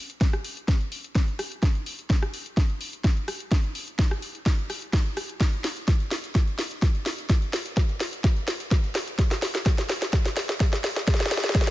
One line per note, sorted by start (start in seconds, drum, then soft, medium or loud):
0.10 closed hi-hat medium
0.21 kick loud
0.21 snare medium
0.21 closed hi-hat medium
0.33 cross-stick medium
0.33 closed hi-hat soft
0.44 open hi-hat loud
0.57 closed hi-hat medium
0.68 kick loud
0.68 snare medium
0.68 closed hi-hat medium
0.81 closed hi-hat soft
0.92 open hi-hat loud
1.04 closed hi-hat medium
1.15 kick loud
1.15 snare medium
1.15 closed hi-hat medium
1.28 closed hi-hat soft
1.39 cross-stick medium
1.39 open hi-hat medium
1.52 closed hi-hat medium
1.63 kick loud
1.63 snare medium
1.63 closed hi-hat medium
1.75 closed hi-hat soft
1.86 open hi-hat loud
1.99 closed hi-hat soft
2.10 kick loud
2.10 snare medium
2.10 closed hi-hat medium
2.22 cross-stick medium
2.22 closed hi-hat soft
2.34 open hi-hat medium
2.46 closed hi-hat soft
2.57 kick loud
2.57 snare medium
2.57 closed hi-hat soft
2.70 closed hi-hat soft
2.81 open hi-hat loud
2.93 closed hi-hat medium
3.04 kick loud
3.04 snare medium
3.04 closed hi-hat medium
3.17 closed hi-hat soft
3.28 cross-stick medium
3.28 open hi-hat loud
3.40 closed hi-hat medium
3.51 kick loud
3.51 snare medium
3.51 closed hi-hat medium
3.64 closed hi-hat soft
3.75 open hi-hat loud
3.88 closed hi-hat soft
3.99 kick loud
3.99 snare medium
3.99 closed hi-hat soft
4.11 cross-stick medium
4.11 closed hi-hat soft
4.22 open hi-hat medium
4.35 closed hi-hat soft
4.46 kick loud
4.46 snare medium
4.46 closed hi-hat soft
4.58 closed hi-hat soft
4.70 cross-stick medium
4.70 open hi-hat loud
4.82 closed hi-hat medium
4.93 kick loud
4.93 snare medium
4.93 closed hi-hat medium
5.06 closed hi-hat soft
5.17 cross-stick medium
5.17 open hi-hat medium
5.29 closed hi-hat medium
5.40 kick loud
5.40 snare medium
5.40 closed hi-hat medium
5.53 closed hi-hat soft
5.64 snare medium
5.64 open hi-hat loud
5.77 closed hi-hat soft
5.88 kick loud
5.88 snare medium
5.88 closed hi-hat medium
6.00 closed hi-hat soft
6.11 snare medium
6.11 open hi-hat medium
6.24 closed hi-hat soft
6.35 kick loud
6.35 snare medium
6.35 closed hi-hat soft
6.47 closed hi-hat soft
6.59 snare medium
6.59 open hi-hat loud
6.71 closed hi-hat medium
6.82 kick loud
6.82 snare medium
6.82 closed hi-hat medium
6.95 closed hi-hat soft
7.06 snare medium
7.06 open hi-hat medium
7.18 closed hi-hat medium
7.29 kick loud
7.29 snare medium
7.29 closed hi-hat medium
7.42 closed hi-hat soft
7.53 snare medium
7.53 open hi-hat loud
7.66 closed hi-hat medium
7.77 kick loud
7.77 snare medium
7.77 closed hi-hat medium
7.89 closed hi-hat soft
8.00 snare medium
8.00 open hi-hat medium
8.13 closed hi-hat medium
8.24 kick loud
8.24 snare medium
8.24 closed hi-hat medium
8.36 closed hi-hat soft
8.48 snare medium
8.48 open hi-hat loud
8.60 closed hi-hat medium
8.71 kick loud
8.71 snare medium
8.71 closed hi-hat medium
8.84 closed hi-hat soft
8.95 snare medium
8.95 open hi-hat medium
9.07 closed hi-hat medium
9.19 kick loud
9.19 snare loud
9.19 closed hi-hat medium
9.31 snare medium
9.31 closed hi-hat soft
9.42 snare loud
9.42 open hi-hat loud
9.55 snare medium
9.55 closed hi-hat medium
9.66 kick loud
9.66 snare medium
9.66 closed hi-hat medium
9.78 snare medium
9.78 closed hi-hat soft
9.89 snare medium
9.89 open hi-hat medium
10.02 snare medium
10.02 closed hi-hat medium
10.13 kick loud
10.13 snare medium
10.13 closed hi-hat medium
10.25 snare medium
10.25 closed hi-hat soft
10.37 snare loud
10.37 open hi-hat loud
10.49 snare medium
10.49 closed hi-hat medium
10.60 kick loud
10.60 snare loud
10.60 closed hi-hat medium
10.73 snare medium
10.73 closed hi-hat soft
10.84 snare loud
10.84 open hi-hat medium
10.96 snare medium
10.96 closed hi-hat medium
11.07 kick loud
11.07 snare loud
11.07 closed hi-hat medium
11.14 snare medium
11.20 snare medium
11.20 closed hi-hat soft
11.26 snare medium
11.31 snare loud
11.31 open hi-hat loud
11.37 snare loud
11.44 snare medium
11.44 closed hi-hat medium
11.49 snare medium
11.55 kick loud
11.55 snare loud
11.55 closed hi-hat medium
11.61 snare medium
11.67 snare loud
11.67 closed hi-hat soft